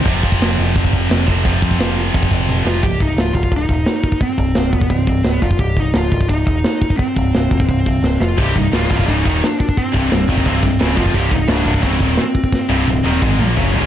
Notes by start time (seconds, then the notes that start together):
0.05 F1 F2 C3 F3, kick, crash
0.23 F1, kick
0.32 kick
0.41 F1, snare, open hi-hat
0.59 F1
0.76 F1, kick, open hi-hat
0.85 kick
0.93 F1, kick
1.10 F1, snare, open hi-hat
1.26 F1 F2 C3 F3, kick
1.43 F1 F2 C3 F3, kick, open hi-hat
1.62 F2, kick
1.71 kick
1.78 F1, snare, open hi-hat
2.14 F1, kick, open hi-hat
2.23 kick
2.31 F1, kick
2.49 F1, high tom
2.65 F1 C3 F3 F4, snare
2.69 F2
2.83 C1 G4, kick, crash
3.00 C1 D#4, kick, open hi-hat
3.17 C#1, snare, open hi-hat
3.21 F4
3.34 C1 F4, kick, open hi-hat
3.43 kick
3.51 C#1, kick, open hi-hat
3.57 D#4
3.68 D#1, kick, open hi-hat
3.86 snare, open hi-hat
4.03 kick, open hi-hat
4.12 kick
4.21 C4, kick, open hi-hat
4.38 C1, kick, open hi-hat
4.55 C1, snare, open hi-hat
4.72 D#1 B3, kick, open hi-hat
4.81 kick
4.90 C1 C4, kick, open hi-hat
5.06 C1, kick, open hi-hat
5.24 C#1, snare, open hi-hat
5.30 B3
5.42 F1 F4, kick, open hi-hat
5.51 kick
5.58 C1 G4, kick, open hi-hat
5.76 C1 D#4, kick, open hi-hat
5.94 C#1 F4, snare, open hi-hat
6.12 C1, kick, open hi-hat
6.21 kick
6.28 C#1 D#4, kick, open hi-hat
6.47 D#1, kick, open hi-hat
6.64 snare, open hi-hat
6.81 kick, open hi-hat
6.90 kick
6.98 C4, kick, open hi-hat
7.16 C1, kick, open hi-hat
7.34 C1, snare, open hi-hat
7.51 D#1, kick, open hi-hat
7.60 kick
7.69 C1 C4, kick, open hi-hat
7.86 C1, kick, open hi-hat
8.03 C#1, snare
8.20 F1 F4, snare
8.38 C1 C2 G2 C3 G4, kick, open hi-hat, crash
8.56 C1 C2 G2 D#4, kick, open hi-hat
8.72 C#1 C#2 G#2 C#3 F4, snare, open hi-hat
8.90 C1 C2 G2 C3 F4, kick, open hi-hat
9.00 kick
9.07 C#1 C#2 G#2 C#3 D#4, kick, open hi-hat
9.24 D#1 D#2 A#2 D#3, kick, open hi-hat
9.44 D4, snare, open hi-hat
9.60 D4, kick, open hi-hat
9.69 kick
9.77 C4, kick, open hi-hat
9.92 C1 C2 G2 C3, kick, open hi-hat
10.11 C1 C2 G2, snare, open hi-hat
10.28 D#1 D#2 A#2 D#3, kick, open hi-hat
10.38 kick
10.45 C1 C2 G2 C3 C4, kick, open hi-hat
10.63 C1 C2 G2, kick, open hi-hat
10.79 C#1 C#2 G#2 C#3, snare, open hi-hat
10.96 F1 F2 C3 F3 F4, kick, open hi-hat
11.06 kick
11.13 C1 C2 G2 C3 G4, kick, open hi-hat
11.31 C1 C2 G2 D#4, kick, open hi-hat
11.37 D#4
11.48 C#1 C#2 G#2 C#3 D4, snare, open hi-hat
11.65 C1 C2 G2 C3, kick, open hi-hat
11.74 kick
11.81 C#1 C#2 G#2 C#3 C4, kick, open hi-hat
12.00 D#1 D#2 A#2 D#3, kick, open hi-hat
12.17 snare, open hi-hat
12.34 kick, open hi-hat
12.44 kick
12.53 kick, snare
12.70 C1 C2 G2 C3
12.88 C1 C2 G2, high tom
13.04 D#1 D#2 A#2 D#3, high tom
13.21 G#1 G#2 D#3 G#3, kick, mid tom
13.39 A#1 A#2 F3 A#3
13.56 F#1 F#2 C#3 F#3, floor tom
13.73 C#1 C#2 G#2 C#3, floor tom